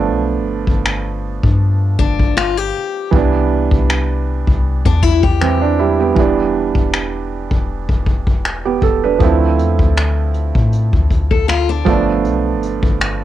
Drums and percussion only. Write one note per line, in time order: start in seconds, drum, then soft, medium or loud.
0.67 kick medium
0.86 finger snap loud
1.43 kick medium
1.99 kick medium
2.19 kick medium
2.37 finger snap loud
3.13 kick loud
3.71 kick medium
3.90 finger snap loud
4.47 kick medium
4.85 kick medium
5.03 kick medium
5.23 kick medium
5.41 finger snap loud
6.16 kick loud
6.75 kick medium
6.94 finger snap loud
7.51 kick medium
7.89 kick medium
8.06 kick medium
8.27 kick medium
8.45 finger snap loud
8.82 kick medium
9.20 kick loud
9.20 closed hi-hat medium
9.59 closed hi-hat medium
9.79 kick medium
9.97 finger snap loud
9.97 closed hi-hat medium
10.34 closed hi-hat medium
10.55 kick medium
10.72 closed hi-hat medium
10.93 kick medium
11.11 kick medium
11.11 closed hi-hat medium
11.31 kick medium
11.49 finger snap loud
11.49 closed hi-hat medium
11.86 kick loud
11.86 closed hi-hat medium
12.24 closed hi-hat medium
12.63 closed hi-hat medium
12.83 kick medium
13.00 finger snap loud
13.00 closed hi-hat medium